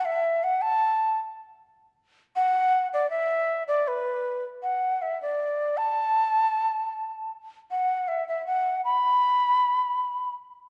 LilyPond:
\new Staff \with { instrumentName = "Quena" } { \time 2/4 \key b \minor \tempo 4 = 79 e''8 fis''16 a''8. r8 | r4 fis''8. d''16 | e''8. d''16 b'8. r16 | fis''8 e''16 d''8. a''8~ |
a''4. r8 | fis''8 e''16 e''16 fis''8 b''8~ | b''4. r8 | }